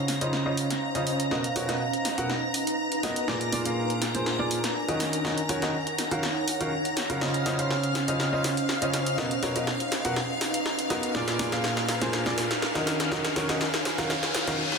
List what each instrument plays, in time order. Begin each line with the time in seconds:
Already playing: grand piano C#3 C#4 F4 C5 F5, ambient pad C#4 C5 D#5 F5, string machine A#5 A#6
0.08 snare, open hi-hat
0.21 grand piano C#3 C#4 F4 C5 D#5, closed hi-hat
0.33 snare
0.46 grand piano C#3 C#4 F4 C5 D#5
0.57 open hi-hat
0.70 snare, closed hi-hat
0.95 grand piano C#3 C#4 F4 C5 D#5, closed hi-hat
1.07 open hi-hat
1.20 closed hi-hat
1.31 grand piano B2 B3 F#4 A#4 D#5, ambient pad D#4, snare
1.44 closed hi-hat
1.52 grand piano B2 B3 F#4 A#4 C#5, ambient pad B4, open hi-hat
1.63 ambient pad A#5
1.69 grand piano B2 B3 F#4 A#4 D#5, snare, closed hi-hat
1.93 closed hi-hat
2.05 snare, open hi-hat
2.18 grand piano B2 B3 F#4 A#4 F#5, closed hi-hat
2.30 snare
2.54 open hi-hat
2.67 closed hi-hat
2.92 closed hi-hat
3.03 grand piano B3 F#4 A#4 D#5, snare, open hi-hat
3.16 closed hi-hat
3.28 grand piano A#2 A#3 F4 G#4 D5, ambient pad D4, snare
3.41 ambient pad G#5, closed hi-hat
3.52 grand piano A#2 A#3 F4 G#4 D5, ambient pad A#4, open hi-hat
3.65 grand piano A#2 A#3 F4 G#4 F5, closed hi-hat
3.90 closed hi-hat
4.02 snare, open hi-hat
4.15 grand piano A#2 A#3 F4 G#4 C5, closed hi-hat
4.26 snare
4.39 grand piano A#2 A#3 F4 G#4 D5
4.51 open hi-hat
4.64 snare, closed hi-hat
4.88 grand piano D#3 C#4 F#4 A#4 D#5, closed hi-hat
5.00 ambient pad D#4, snare, open hi-hat
5.13 ambient pad F#5, closed hi-hat
5.25 grand piano D#3 C#4 F#4 A#4 D#5, snare
5.36 ambient pad C#5, closed hi-hat
5.49 grand piano D#3 C#4 F#4 A#4 C#5, open hi-hat
5.62 grand piano D#3 C#4 F#4 A#4 D#5, snare, closed hi-hat
5.87 closed hi-hat
5.98 snare, open hi-hat
6.11 grand piano D#3 C#4 F#4 A#4 F5, closed hi-hat
6.23 snare
6.48 open hi-hat
6.61 grand piano D#3 C#4 F#4 A#4 F5, closed hi-hat
6.85 closed hi-hat
6.97 snare, open hi-hat
7.10 grand piano C#3 C#4 F#4 A#4 F5, closed hi-hat
7.21 grand piano C#3 C#4 F4 C5 D#5, ambient pad C#4, string machine F5 F6, snare, riser
7.34 closed hi-hat
7.43 grand piano C#3 C#4 F4 C5 D#5, ambient pad D#5, snare, open hi-hat
7.47 ambient pad C5
7.59 grand piano C#3 C#4 F4 C5 F5, closed hi-hat
7.71 snare
7.83 closed hi-hat
7.95 snare, open hi-hat
8.00 ambient pad F5
8.08 grand piano C#3 C#4 F4 C5 D#5, closed hi-hat
8.20 snare
8.33 grand piano C#3 C#4 F4 C5 D#5
8.44 snare, open hi-hat
8.57 closed hi-hat
8.69 snare
8.82 grand piano C#3 C#4 F4 C5 D#5, closed hi-hat
8.94 snare, open hi-hat
9.06 closed hi-hat
9.18 grand piano B2 B3 F#4 A#4 D#5, ambient pad D#4, snare
9.31 closed hi-hat
9.43 grand piano B2 B3 F#4 A#4 C#5, snare, open hi-hat
9.51 ambient pad B4
9.56 grand piano B2 B3 F#4 A#4 D#5, closed hi-hat
9.67 snare
9.78 ambient pad A#5, closed hi-hat
9.92 snare, open hi-hat
10.05 grand piano B2 B3 F#4 A#4 F#5, closed hi-hat
10.16 snare
10.41 snare, open hi-hat
10.54 closed hi-hat
10.66 snare
10.79 closed hi-hat
10.90 grand piano B3 F#4 A#4 D#5, snare, open hi-hat
11.03 closed hi-hat
11.15 grand piano A#2 A#3 F4 G#4 D5, ambient pad D4, snare
11.28 ambient pad A#4, snare, closed hi-hat
11.39 grand piano A#2 A#3 F4 G#4 D5, snare, open hi-hat
11.52 grand piano A#2 A#3 F4 G#4 F5, snare, closed hi-hat
11.64 snare
11.77 snare, closed hi-hat
11.89 snare, open hi-hat
11.93 ambient pad G#5
12.01 grand piano A#2 A#3 F4 G#4 C5, snare, closed hi-hat
12.13 snare
12.26 grand piano A#2 A#3 F4 G#4 D5, snare
12.38 snare, open hi-hat
12.51 snare, closed hi-hat
12.62 snare
12.75 grand piano D#3 C#4 F#4 A#4 D#5, snare, closed hi-hat
12.87 ambient pad D#4, snare, open hi-hat
13.00 ambient pad C#5, snare, closed hi-hat
13.11 grand piano D#3 C#4 F#4 A#4 D#5, snare
13.25 snare, closed hi-hat
13.36 grand piano D#3 C#4 F#4 A#4 C#5, snare, open hi-hat
13.49 grand piano D#3 C#4 F#4 A#4 D#5, snare, closed hi-hat
13.61 snare
13.74 snare, closed hi-hat
13.85 snare, open hi-hat
13.98 grand piano D#3 C#4 F#4 A#4 F5, snare, closed hi-hat
14.10 snare, reverse cymbal
14.23 snare, closed hi-hat
14.35 snare, open hi-hat
14.47 grand piano D#3 C#4 F#4 A#4 F5, snare, closed hi-hat
14.72 snare